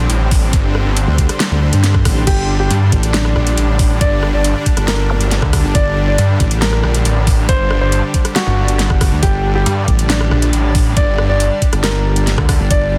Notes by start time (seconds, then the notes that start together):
Already playing: D3 G3 C4 D4 G4 C6
0.10 A1, closed hi-hat
0.31 kick, open hi-hat
0.53 G1, kick, closed hi-hat
0.75 cross-stick
0.86 G1
0.97 closed hi-hat
1.08 D2
1.18 kick, closed hi-hat
1.29 cross-stick, closed hi-hat
1.40 snare, closed hi-hat
1.51 D2
1.73 G2, closed hi-hat
1.84 snare, closed hi-hat
1.94 kick, cross-stick
2.05 A1, kick, cross-stick, open hi-hat
2.27 G1 D4 G4, kick, closed hi-hat, crash
2.60 G4
2.71 G2, closed hi-hat
2.92 A1, kick, closed hi-hat
3.03 closed hi-hat
3.14 D4, snare, closed hi-hat
3.25 cross-stick
3.36 A#1, cross-stick
3.47 closed hi-hat
3.57 A1, closed hi-hat
3.79 kick, open hi-hat
3.93 D5
4.01 G1 D5, kick, closed hi-hat
4.23 cross-stick
4.34 G1 D5
4.44 closed hi-hat
4.66 kick, closed hi-hat
4.77 G1, cross-stick, closed hi-hat
4.88 A#4, snare, closed hi-hat
5.10 zap
5.21 closed hi-hat
5.31 snare, closed hi-hat
5.42 D2, kick, cross-stick
5.53 kick, cross-stick, open hi-hat
5.64 G1
5.75 G1 D5, kick, closed hi-hat
6.07 D5
6.18 G2, closed hi-hat
6.40 A1, kick, closed hi-hat
6.51 closed hi-hat
6.62 A#4, snare, closed hi-hat
6.73 cross-stick
6.83 A#1, cross-stick
6.94 closed hi-hat
7.05 A1, closed hi-hat
7.27 kick, open hi-hat
7.49 G1 C5, kick, closed hi-hat
7.71 cross-stick
7.81 G1 C5
7.92 closed hi-hat
8.14 kick, closed hi-hat
8.25 cross-stick, closed hi-hat
8.36 F#4, snare, closed hi-hat
8.47 G1
8.68 closed hi-hat
8.79 snare, closed hi-hat
8.90 G1, kick, cross-stick
9.01 kick, cross-stick, open hi-hat
9.12 D2
9.23 G1 G4, kick, closed hi-hat
9.55 G4
9.66 G2, closed hi-hat
9.88 A1, kick, closed hi-hat
9.99 closed hi-hat
10.10 D4, snare, closed hi-hat
10.21 cross-stick
10.31 A#1, cross-stick
10.42 closed hi-hat
10.53 A1, closed hi-hat
10.75 kick, open hi-hat
10.97 G1 D5, kick, closed hi-hat
11.18 cross-stick
11.29 G1 D5
11.40 closed hi-hat
11.62 kick, closed hi-hat
11.73 G1, cross-stick, closed hi-hat
11.84 A#4, snare, closed hi-hat
12.16 closed hi-hat
12.27 snare, closed hi-hat
12.38 D2, kick, cross-stick
12.49 kick, cross-stick, open hi-hat
12.60 G1
12.71 G1 D5, kick, closed hi-hat